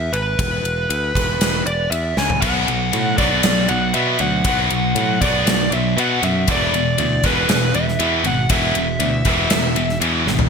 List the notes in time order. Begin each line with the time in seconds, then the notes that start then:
Already playing: E5
0.12 G#1 B4, ride
0.39 E1, kick, ride
0.64 E1, ride
0.89 D2, ride
1.15 E1, kick, ride
1.40 E1, snare, ride
1.66 E1 D5, ride
1.91 E2 E5, ride
2.17 C#2 G#5, snare
2.30 floor tom
2.42 B1 B2 F#3 B3 F#5, kick, ride, crash
2.67 B1 B2 F#3, ride
2.92 A2 B2 F#3, ride
3.18 B1 B2 F#3 B3 D5, kick, ride
3.43 B1 B2 F#3, snare, ride
3.69 B1 B2 F#3 F#5, ride
3.94 B2 F#3 B3 E5, ride
4.19 D2 B2 F#3 F#5, ride
4.45 B1 B2 F#3 B3 F#5, kick, ride
4.70 B1 B2 F#3, ride
4.95 A2 B2 F#3, ride
5.21 B1 B2 F#3 B3 D5, kick, ride
5.47 B1 B2 F#3, snare, ride
5.72 B1 B2 F#3 E5, ride
5.97 B2 F#3 B3 F#5, ride
6.23 F#2 B2 F#3 E5, ride
6.48 E1 E2 B2 E3 D5, kick, ride
6.73 E1 E2 B2, ride
6.98 D2 E2 B2, ride
7.23 E1 E2 B2 E3 B4, kick, ride
7.48 E1 E2 B2, snare, ride
7.74 E1 E2 B2 E5, ride
7.88 snare
7.99 E2 B2 E3, ride
8.24 G#1 E2 B2 F#5, ride
8.49 E1 E2 B2 E3 E5, kick, ride
8.74 E1 E2 B2, ride
8.99 D2 E2 B2, ride
9.25 E1 E2 B2 E3, kick, ride
9.50 E1 E2 B2, snare, ride
9.75 E1 E2 B2, ride
9.89 snare
10.00 E2 B2 E3, ride
10.26 G#1 E2 B2, snare
10.39 floor tom